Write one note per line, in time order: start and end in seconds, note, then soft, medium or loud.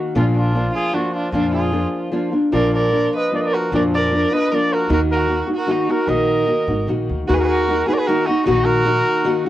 0.00 0.15 D#3 medium
0.00 0.15 A#3 medium
0.00 0.16 D#4 medium
0.00 0.16 F#4 medium
0.15 0.66 A#1 medium
0.15 0.54 A#2 medium
0.15 0.53 F3 medium
0.15 0.54 A#3 medium
0.15 0.25 D4 medium
0.15 0.54 D4 medium
0.15 0.25 F4 medium
0.15 0.55 F4 medium
0.35 0.71 D4 medium
0.35 0.72 F4 medium
0.54 0.92 F3 soft
0.54 0.94 A#3 medium
0.54 0.93 D4 soft
0.54 0.94 F4 soft
0.74 0.95 F4 medium
0.74 0.96 G#4 medium
0.93 1.32 F3 medium
0.93 1.33 A#3 medium
0.93 1.13 D4 medium
0.93 1.33 D4 medium
0.93 1.33 F4 medium
0.93 1.13 F#4 medium
1.14 1.31 D4 medium
1.14 1.31 F4 medium
1.32 1.84 F2 medium
1.32 1.73 A#2 medium
1.32 1.71 F3 medium
1.32 1.73 A#3 medium
1.32 1.51 D4 medium
1.32 1.72 D4 medium
1.32 1.51 F4 medium
1.32 1.73 F4 medium
1.52 2.01 F4 medium
1.52 2.01 G#4 medium
1.73 2.10 F3 soft
1.73 2.12 A#3 medium
1.73 2.11 D4 medium
1.73 2.12 F4 soft
2.12 2.32 F3 medium
2.12 2.32 A#3 medium
2.12 2.32 D4 medium
2.12 2.31 F4 medium
2.32 2.51 A#3 soft
2.32 2.51 D4 soft
2.32 2.52 F4 soft
2.52 3.04 A#1 medium
2.52 2.92 A#2 medium
2.52 2.91 F3 medium
2.52 2.92 A#3 medium
2.52 2.92 D4 medium
2.52 2.92 F4 medium
2.52 2.72 A#4 medium
2.52 2.71 D5 medium
2.74 3.11 A#4 medium
2.74 3.11 D5 medium
2.92 3.30 F3 soft
2.92 3.32 A#3 soft
2.92 3.32 D4 soft
2.92 3.32 F4 soft
3.15 3.36 B4 medium
3.15 3.36 D#5 medium
3.32 3.71 F3 medium
3.32 3.73 A#3 medium
3.32 3.72 D4 medium
3.32 3.72 F4 medium
3.32 3.39 A#4 medium
3.32 3.39 D5 medium
3.37 3.46 B4 medium
3.37 3.45 D#5 medium
3.44 3.55 A#4 medium
3.44 3.55 D5 medium
3.54 3.72 F#4 medium
3.54 3.72 A#4 medium
3.72 4.23 F2 medium
3.72 4.12 A#2 medium
3.72 4.09 F3 medium
3.72 4.11 A#3 medium
3.72 4.11 D4 medium
3.72 4.12 F4 medium
3.72 3.83 A#4 medium
3.72 3.83 D5 medium
3.94 4.35 A#4 medium
3.94 4.35 D5 loud
4.11 4.31 F3 medium
4.11 4.31 A#3 soft
4.11 4.31 D4 medium
4.11 4.30 F4 soft
4.31 4.51 A#3 soft
4.31 4.51 D4 soft
4.31 4.50 F4 soft
4.31 4.54 B4 medium
4.31 4.56 D#5 medium
4.52 4.89 F3 medium
4.52 4.89 A#3 medium
4.52 4.89 D4 medium
4.52 4.90 F4 medium
4.52 4.75 A#4 medium
4.52 4.74 D5 loud
4.73 4.91 F#4 medium
4.73 4.91 A#4 medium
4.89 5.41 D#2 loud
4.89 5.27 D#3 medium
4.89 5.29 A#3 medium
4.89 5.29 D#4 medium
4.89 5.30 F#4 medium
4.89 5.00 F#4 medium
4.89 5.00 A#4 medium
5.11 5.47 F#4 medium
5.11 5.47 A#4 medium
5.28 5.48 D#3 medium
5.28 5.48 A#3 medium
5.28 5.47 D#4 soft
5.28 5.46 F#4 medium
5.47 5.66 A#3 soft
5.47 5.67 D#4 soft
5.47 5.67 F#4 soft
5.56 5.73 F#4 medium
5.56 5.72 A#4 medium
5.67 5.87 D#3 medium
5.67 5.87 A#3 medium
5.67 5.88 D#4 medium
5.67 5.88 F#4 medium
5.67 5.92 F#4 medium
5.71 5.91 D#4 medium
5.89 6.07 A#3 soft
5.89 6.07 D#4 soft
5.89 6.07 F#4 medium
5.89 6.10 F#4 medium
5.89 6.11 A#4 medium
6.07 6.47 A#1 medium
6.07 6.47 D#3 medium
6.07 6.48 A#3 medium
6.07 6.49 D#4 medium
6.07 6.49 F#4 medium
6.07 6.89 A#4 medium
6.07 6.89 D#5 medium
6.47 6.68 D#3 soft
6.47 6.68 A#3 medium
6.47 6.68 D#4 medium
6.47 6.67 F#4 soft
6.67 6.86 G#1 medium
6.67 6.87 A#3 soft
6.67 6.88 D#4 soft
6.67 6.88 F#4 soft
6.87 7.07 A#1 medium
6.87 7.28 D#3 medium
6.87 7.28 A#3 medium
6.87 7.29 D#4 medium
6.87 7.29 F#4 medium
7.09 7.27 D2 medium
7.28 7.81 D#2 loud
7.28 7.67 D#3 medium
7.28 7.69 A#3 medium
7.28 7.68 D#4 medium
7.28 7.35 F#4 medium
7.28 7.69 F#4 medium
7.28 7.35 A#4 medium
7.34 7.42 G#4 medium
7.34 7.40 B4 medium
7.39 7.43 F#4 medium
7.39 7.43 A#4 medium
7.43 7.49 G#4 medium
7.43 7.49 B4 medium
7.48 7.87 F#4 medium
7.48 7.88 A#4 medium
7.68 7.88 D#3 medium
7.68 7.87 A#3 soft
7.68 7.87 D#4 soft
7.68 7.85 F#4 medium
7.87 8.08 A#3 soft
7.87 8.07 D#4 soft
7.87 8.07 F#4 soft
7.87 7.95 G#4 medium
7.87 7.94 B4 medium
7.93 8.00 A#4 medium
7.93 8.00 D5 medium
7.98 8.09 G#4 medium
7.98 8.08 B4 medium
8.07 8.28 D#3 medium
8.07 8.29 A#3 medium
8.07 8.28 D#4 medium
8.07 8.28 F#4 medium
8.07 8.27 F#4 medium
8.07 8.28 A#4 loud
8.26 8.45 A#3 soft
8.26 8.45 D#4 medium
8.26 8.46 D#4 medium
8.26 8.45 F#4 medium
8.26 8.46 F#4 medium
8.46 8.99 A#1 medium
8.46 8.84 D#3 medium
8.46 8.86 A#3 medium
8.46 8.66 D#4 medium
8.46 8.85 D#4 medium
8.46 8.66 F#4 loud
8.46 8.85 F#4 loud
8.64 9.44 F#4 medium
8.64 9.44 A#4 loud
8.86 9.23 D#3 medium
8.86 9.24 A#3 medium
8.86 9.24 D#4 medium
8.86 9.25 F#4 medium
9.25 9.45 D#3 medium
9.25 9.45 A#3 medium
9.25 9.45 D#4 medium
9.25 9.45 F#4 medium
9.46 9.49 F#4 medium